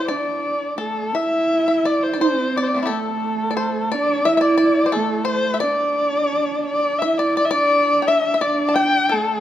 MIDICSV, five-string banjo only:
0, 0, Header, 1, 2, 480
1, 0, Start_track
1, 0, Tempo, 700935
1, 71, Time_signature, 2, 2, 24, 8
1, 1512, Tempo, 684932
1, 3912, Tempo, 694444
1, 6517, End_track
2, 0, Start_track
2, 0, Title_t, "Five-string banjo"
2, 0, Program_c, 0, 105
2, 58, Note_on_c, 0, 74, 65
2, 533, Note_on_c, 0, 69, 55
2, 756, Note_off_c, 0, 74, 0
2, 785, Note_on_c, 0, 76, 68
2, 790, Note_off_c, 0, 69, 0
2, 1141, Note_off_c, 0, 76, 0
2, 1149, Note_on_c, 0, 76, 60
2, 1267, Note_off_c, 0, 76, 0
2, 1269, Note_on_c, 0, 74, 62
2, 1454, Note_off_c, 0, 74, 0
2, 1462, Note_on_c, 0, 74, 47
2, 1511, Note_off_c, 0, 74, 0
2, 1515, Note_on_c, 0, 72, 64
2, 1765, Note_off_c, 0, 72, 0
2, 1769, Note_on_c, 0, 74, 73
2, 1889, Note_on_c, 0, 57, 32
2, 1900, Note_on_c, 0, 60, 33
2, 1911, Note_on_c, 0, 62, 38
2, 1942, Note_off_c, 0, 60, 0
2, 1945, Note_on_c, 0, 64, 46
2, 1966, Note_on_c, 0, 67, 49
2, 1971, Note_off_c, 0, 62, 0
2, 1974, Note_on_c, 0, 69, 66
2, 1979, Note_off_c, 0, 57, 0
2, 2010, Note_off_c, 0, 74, 0
2, 2043, Note_off_c, 0, 64, 0
2, 2065, Note_off_c, 0, 67, 0
2, 2419, Note_off_c, 0, 69, 0
2, 2421, Note_on_c, 0, 74, 54
2, 2462, Note_off_c, 0, 74, 0
2, 2464, Note_on_c, 0, 72, 68
2, 2694, Note_off_c, 0, 72, 0
2, 2709, Note_on_c, 0, 74, 73
2, 2942, Note_off_c, 0, 74, 0
2, 2945, Note_on_c, 0, 76, 85
2, 3020, Note_off_c, 0, 76, 0
2, 3029, Note_on_c, 0, 76, 54
2, 3052, Note_off_c, 0, 76, 0
2, 3055, Note_on_c, 0, 74, 66
2, 3163, Note_off_c, 0, 74, 0
2, 3171, Note_on_c, 0, 74, 73
2, 3359, Note_off_c, 0, 74, 0
2, 3370, Note_on_c, 0, 72, 46
2, 3414, Note_on_c, 0, 69, 70
2, 3425, Note_off_c, 0, 72, 0
2, 3642, Note_on_c, 0, 72, 68
2, 3669, Note_off_c, 0, 69, 0
2, 3843, Note_off_c, 0, 72, 0
2, 3846, Note_on_c, 0, 76, 54
2, 3887, Note_off_c, 0, 76, 0
2, 3890, Note_on_c, 0, 74, 75
2, 4840, Note_off_c, 0, 74, 0
2, 4871, Note_on_c, 0, 76, 78
2, 4986, Note_off_c, 0, 76, 0
2, 4989, Note_on_c, 0, 74, 63
2, 5104, Note_off_c, 0, 74, 0
2, 5113, Note_on_c, 0, 74, 72
2, 5199, Note_off_c, 0, 74, 0
2, 5207, Note_on_c, 0, 74, 76
2, 5524, Note_off_c, 0, 74, 0
2, 5563, Note_on_c, 0, 79, 53
2, 5601, Note_off_c, 0, 79, 0
2, 5603, Note_on_c, 0, 76, 73
2, 5776, Note_off_c, 0, 76, 0
2, 5784, Note_on_c, 0, 76, 61
2, 5833, Note_on_c, 0, 74, 74
2, 5836, Note_off_c, 0, 76, 0
2, 6022, Note_on_c, 0, 81, 57
2, 6033, Note_off_c, 0, 74, 0
2, 6068, Note_off_c, 0, 81, 0
2, 6071, Note_on_c, 0, 79, 78
2, 6304, Note_on_c, 0, 69, 70
2, 6318, Note_off_c, 0, 79, 0
2, 6517, Note_off_c, 0, 69, 0
2, 6517, End_track
0, 0, End_of_file